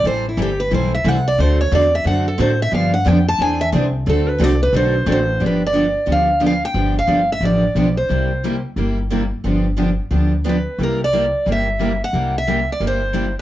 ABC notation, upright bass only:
X:1
M:4/4
L:1/8
Q:"Swing" 1/4=178
K:G
V:1 name="Upright bass" clef=bass
A,,,2 G,,,2 B,,,2 C,,2 | D,,2 E,,2 F,,2 A,,2 | G,,2 =F,,2 E,,2 ^B,,,2 | D,,2 C,,2 B,,,2 A,,,2 |
G,,,4 D,,4 | G,,,2 G,,,2 A,,,2 B,,,2 | C,,4 G,,,4 | G,,,4 D,,4 |
C,,4 G,,,4 | C,,4 G,,,4 |]